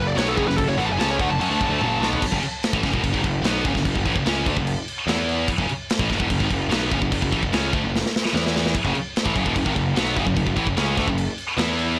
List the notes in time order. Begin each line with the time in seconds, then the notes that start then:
Already playing: F#1 F#2 C#3
0.07 D5
0.15 B1 B2 F#3 B3 C#5, snare, crash
0.28 A4
0.37 F#1 F#2 C#3 G#4, kick, crash
0.47 F#1 F#2 C#3 B4, snare
0.57 F#1 F#2 C#3 A4, kick, crash
0.67 F#1 F#2 C#3 C#5
0.78 A1 A2 E3 F#5, crash
0.85 F#1 F#2 C#3 A5
0.92 G#5
0.97 C#2 C#3 G#3 C#4 A5, snare, crash
1.11 C#5
1.18 D2 D3 A3 F#5, kick, crash
1.29 F#1 F#2 C#3 A5
1.40 F#2 F#3 C#4 A5, crash
1.50 D2 D3 A3
1.59 F#1 F#2 C#3, kick, crash
1.69 D2 D3 A3
1.79 F#1 F#2 C#3 F#3, high tom
2.01 B1 B2 F#3 B3, snare
2.13 floor tom
2.22 kick, crash
2.31 F#1 F#2 C#3, kick
2.41 muted distorted electric guitar stroke, muted picked electric bass stroke, crash
2.63 snare, crash
2.73 A1 A2 E3, kick
2.83 F#1 F#2 C#3, kick, snare, crash
2.93 E1 E2 B2, kick
3.04 F#1 F#2 C#3, kick, crash
3.14 G#1 G#2 D#3, kick
3.24 F#1 F#2 C#3, kick, crash
3.43 B1 B2 F#3 B3, snare, crash
3.65 F#1 F#2 C#3, kick, crash
3.75 F#1 F#2 C#3, kick, snare
3.85 F#1 F#2 C#3, kick, crash
3.96 F#1 F#2 C#3, kick
4.05 A1 A2 E3, kick, crash
4.15 F#1 F#2 C#3, kick
4.26 C#2 C#3 G#3 C#4, snare, crash
4.46 D2 D3 A3, kick, crash
4.56 F#1 F#2 C#3, kick
4.67 crash
4.88 crash
5.07 E2 E3 B3 E4, snare, crash
5.29 crash
5.48 kick, crash
5.58 F#1 F#2 C#3, kick
5.68 muted picked electric bass stroke, muted distorted electric guitar stroke, crash
5.90 snare, crash
5.99 A1 A2 E3, kick
6.10 F#1 F#2 C#3, kick, snare, crash
6.19 E1 E2 B2, kick
6.29 F#1 F#2 C#3, kick, crash
6.39 G#1 G#2 D#3, kick
6.49 F#1 F#2 C#3, kick, crash
6.70 B1 B2 F#3 B3, snare, crash
6.90 F#1 F#2 C#3, kick, crash
7.01 F#1 F#2 C#3, kick
7.11 F#1 F#2 C#3, kick, crash
7.21 F#1 F#2 C#3, kick
7.32 A1 A2 E3, kick, crash
7.42 F#1 F#2 C#3, kick
7.52 C#2 C#3 G#3 C#4, snare, crash
7.73 D2 D3 A3, kick, crash
7.83 F#1 F#2 C#3
7.96 snare
8.06 snare
8.16 snare
8.25 snare
8.34 E2 E3 B3 E4, snare
8.47 snare
8.56 snare
8.66 snare
8.75 kick, crash
8.84 F#1 F#2 C#3, kick
8.95 muted picked electric bass stroke, muted distorted electric guitar stroke, crash
9.16 snare, crash
9.25 A1 A2 E3, kick
9.36 F#1 F#2 C#3, kick, crash
9.45 E1 E2 B2, kick
9.56 F#1 F#2 C#3, kick, crash
9.65 G#1 G#2 D#3, kick
9.76 F#1 F#2 C#3, kick, crash
9.96 B1 B2 F#3 B3, snare, crash
10.16 F#1 F#2 C#3, kick, crash
10.27 F#1 F#2 C#3, kick
10.36 F#1 F#2 C#3, kick, crash
10.47 F#1 F#2 C#3, kick
10.56 A1 A2 E3, kick, crash
10.67 F#1 F#2 C#3, kick
10.77 C#2 C#3 G#3 C#4, snare, crash
10.96 D2 D3 A3, kick, snare, crash
11.07 F#1 F#2 C#3, kick
11.18 crash
11.38 crash
11.57 E2 E3 B3 E4, snare, crash
11.79 crash